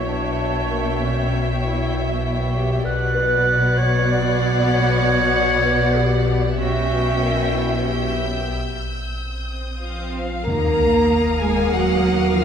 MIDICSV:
0, 0, Header, 1, 14, 480
1, 0, Start_track
1, 0, Tempo, 621118
1, 775, Time_signature, 3, 2, 24, 8
1, 5578, Tempo, 649351
1, 7978, Tempo, 629591
1, 9487, End_track
2, 0, Start_track
2, 0, Title_t, "Violin section"
2, 0, Program_c, 0, 48
2, 2212, Note_on_c, 0, 90, 53
2, 2218, Note_on_c, 0, 93, 51
2, 2694, Note_on_c, 0, 92, 51
2, 3862, Note_off_c, 0, 93, 0
2, 4293, Note_off_c, 0, 92, 0
2, 4293, Note_on_c, 0, 93, 51
2, 4821, Note_off_c, 0, 90, 0
2, 4821, Note_off_c, 0, 93, 0
2, 5097, Note_on_c, 0, 91, 43
2, 5580, Note_on_c, 0, 88, 35
2, 7177, Note_off_c, 0, 88, 0
2, 7177, Note_on_c, 0, 87, 35
2, 7705, Note_off_c, 0, 87, 0
2, 7705, Note_off_c, 0, 91, 0
2, 7971, Note_on_c, 0, 87, 39
2, 8451, Note_on_c, 0, 89, 41
2, 9487, Note_off_c, 0, 87, 0
2, 9487, Note_off_c, 0, 89, 0
2, 9487, End_track
3, 0, Start_track
3, 0, Title_t, "Violin section"
3, 0, Program_c, 1, 48
3, 0, Note_on_c, 1, 79, 42
3, 2186, Note_off_c, 1, 79, 0
3, 2206, Note_on_c, 1, 78, 71
3, 5060, Note_off_c, 1, 78, 0
3, 5087, Note_on_c, 1, 79, 53
3, 6015, Note_off_c, 1, 79, 0
3, 6041, Note_on_c, 1, 79, 35
3, 6517, Note_off_c, 1, 79, 0
3, 7976, Note_on_c, 1, 77, 51
3, 9487, Note_off_c, 1, 77, 0
3, 9487, End_track
4, 0, Start_track
4, 0, Title_t, "Violin section"
4, 0, Program_c, 2, 48
4, 0, Note_on_c, 2, 76, 43
4, 2188, Note_off_c, 2, 76, 0
4, 2209, Note_on_c, 2, 74, 68
4, 5061, Note_off_c, 2, 74, 0
4, 5092, Note_on_c, 2, 76, 52
4, 6017, Note_off_c, 2, 76, 0
4, 6048, Note_on_c, 2, 76, 37
4, 6521, Note_off_c, 2, 76, 0
4, 7493, Note_on_c, 2, 77, 38
4, 7949, Note_off_c, 2, 77, 0
4, 7971, Note_on_c, 2, 82, 60
4, 8694, Note_on_c, 2, 80, 57
4, 8697, Note_off_c, 2, 82, 0
4, 8931, Note_on_c, 2, 78, 60
4, 8935, Note_off_c, 2, 80, 0
4, 9406, Note_on_c, 2, 77, 58
4, 9412, Note_off_c, 2, 78, 0
4, 9487, Note_off_c, 2, 77, 0
4, 9487, End_track
5, 0, Start_track
5, 0, Title_t, "Grand piano"
5, 0, Program_c, 3, 0
5, 0, Control_c, 3, 64, 127
5, 0, Note_on_c, 3, 58, 29
5, 0, Note_on_c, 3, 70, 32
5, 520, Note_off_c, 3, 58, 0
5, 523, Note_off_c, 3, 70, 0
5, 532, Note_on_c, 3, 58, 33
5, 535, Note_on_c, 3, 70, 37
5, 1939, Note_off_c, 3, 58, 0
5, 1940, Note_off_c, 3, 70, 0
5, 2227, Control_c, 3, 64, 0
5, 2332, Control_c, 3, 64, 127
5, 2430, Note_on_c, 3, 71, 67
5, 3847, Note_off_c, 3, 71, 0
5, 4366, Note_on_c, 3, 71, 55
5, 5109, Control_c, 3, 64, 0
5, 5256, Control_c, 3, 64, 127
5, 5576, Note_on_c, 3, 70, 33
5, 5780, Note_off_c, 3, 71, 0
5, 6283, Note_on_c, 3, 71, 28
5, 6500, Note_off_c, 3, 70, 0
5, 6511, Note_off_c, 3, 71, 0
5, 6544, Control_c, 3, 64, 0
5, 6671, Control_c, 3, 64, 127
5, 7992, Control_c, 3, 64, 0
5, 8097, Control_c, 3, 64, 127
5, 8722, Note_on_c, 3, 58, 35
5, 8723, Note_on_c, 3, 70, 44
5, 9487, Note_off_c, 3, 58, 0
5, 9487, Note_off_c, 3, 70, 0
5, 9487, End_track
6, 0, Start_track
6, 0, Title_t, "Clarinet"
6, 0, Program_c, 4, 71
6, 59, Note_on_c, 4, 62, 63
6, 783, Note_on_c, 4, 61, 66
6, 795, Note_off_c, 4, 62, 0
6, 1090, Note_off_c, 4, 61, 0
6, 1253, Note_on_c, 4, 64, 66
6, 1700, Note_off_c, 4, 64, 0
6, 1966, Note_on_c, 4, 67, 73
6, 2196, Note_on_c, 4, 71, 90
6, 2207, Note_off_c, 4, 67, 0
6, 2919, Note_on_c, 4, 73, 87
6, 2931, Note_off_c, 4, 71, 0
6, 3176, Note_on_c, 4, 74, 83
6, 3188, Note_off_c, 4, 73, 0
6, 3649, Note_off_c, 4, 74, 0
6, 3653, Note_on_c, 4, 73, 94
6, 4614, Note_on_c, 4, 67, 73
6, 4625, Note_off_c, 4, 73, 0
6, 5096, Note_on_c, 4, 66, 60
6, 5108, Note_off_c, 4, 67, 0
6, 5813, Note_on_c, 4, 64, 49
6, 5824, Note_off_c, 4, 66, 0
6, 6039, Note_on_c, 4, 67, 49
6, 6050, Note_off_c, 4, 64, 0
6, 6526, Note_off_c, 4, 67, 0
6, 9487, End_track
7, 0, Start_track
7, 0, Title_t, "French horn section"
7, 0, Program_c, 5, 60
7, 7488, Note_on_c, 5, 65, 46
7, 7946, Note_off_c, 5, 65, 0
7, 7959, Note_on_c, 5, 70, 74
7, 8691, Note_off_c, 5, 70, 0
7, 8693, Note_on_c, 5, 68, 62
7, 8932, Note_on_c, 5, 66, 63
7, 8935, Note_off_c, 5, 68, 0
7, 9413, Note_off_c, 5, 66, 0
7, 9416, Note_on_c, 5, 65, 71
7, 9487, Note_off_c, 5, 65, 0
7, 9487, End_track
8, 0, Start_track
8, 0, Title_t, "Viola section"
8, 0, Program_c, 6, 48
8, 0, Note_on_c, 6, 73, 43
8, 2179, Note_off_c, 6, 73, 0
8, 2213, Note_on_c, 6, 59, 66
8, 5063, Note_off_c, 6, 59, 0
8, 5091, Note_on_c, 6, 61, 47
8, 6017, Note_off_c, 6, 61, 0
8, 6040, Note_on_c, 6, 61, 31
8, 6279, Note_off_c, 6, 61, 0
8, 6279, Note_on_c, 6, 59, 29
8, 6526, Note_off_c, 6, 59, 0
8, 7978, Note_on_c, 6, 70, 43
8, 7981, Note_on_c, 6, 58, 45
8, 9487, Note_off_c, 6, 58, 0
8, 9487, Note_off_c, 6, 70, 0
8, 9487, End_track
9, 0, Start_track
9, 0, Title_t, "Cello section"
9, 0, Program_c, 7, 48
9, 0, Note_on_c, 7, 47, 44
9, 2186, Note_off_c, 7, 47, 0
9, 2210, Note_on_c, 7, 47, 64
9, 5062, Note_off_c, 7, 47, 0
9, 5096, Note_on_c, 7, 47, 51
9, 6502, Note_off_c, 7, 47, 0
9, 7495, Note_on_c, 7, 53, 38
9, 7950, Note_off_c, 7, 53, 0
9, 7978, Note_on_c, 7, 58, 56
9, 8701, Note_off_c, 7, 58, 0
9, 8703, Note_on_c, 7, 56, 56
9, 8940, Note_off_c, 7, 56, 0
9, 8940, Note_on_c, 7, 54, 59
9, 9412, Note_on_c, 7, 53, 58
9, 9417, Note_off_c, 7, 54, 0
9, 9487, Note_off_c, 7, 53, 0
9, 9487, End_track
10, 0, Start_track
10, 0, Title_t, "Timpani"
10, 0, Program_c, 8, 47
10, 7984, Note_on_c, 8, 51, 64
10, 8673, Note_off_c, 8, 51, 0
10, 9487, End_track
11, 0, Start_track
11, 0, Title_t, "Double bass section"
11, 0, Program_c, 10, 48
11, 0, Note_on_c, 10, 35, 50
11, 2182, Note_off_c, 10, 35, 0
11, 2214, Note_on_c, 10, 35, 68
11, 5064, Note_off_c, 10, 35, 0
11, 5095, Note_on_c, 10, 35, 58
11, 6502, Note_off_c, 10, 35, 0
11, 7977, Note_on_c, 10, 39, 48
11, 9487, Note_off_c, 10, 39, 0
11, 9487, End_track
12, 0, Start_track
12, 0, Title_t, "Sub bass"
12, 0, Program_c, 11, 38
12, 0, Note_on_c, 11, 35, 65
12, 2178, Note_off_c, 11, 35, 0
12, 2214, Note_on_c, 11, 35, 68
12, 6523, Note_on_c, 11, 34, 62
12, 6534, Note_off_c, 11, 35, 0
12, 7972, Note_off_c, 11, 34, 0
12, 7987, Note_on_c, 11, 39, 68
12, 9487, Note_off_c, 11, 39, 0
12, 9487, End_track
13, 0, Start_track
13, 0, Title_t, "Sub drop"
13, 0, Program_c, 12, 103
13, 7979, Note_on_c, 12, 60, 52
13, 9417, Note_off_c, 12, 60, 0
13, 9487, End_track
14, 0, Start_track
14, 0, Title_t, "Swell"
14, 0, Program_c, 13, 103
14, 6530, Note_on_c, 13, 60, 29
14, 7976, Note_off_c, 13, 60, 0
14, 9487, End_track
0, 0, End_of_file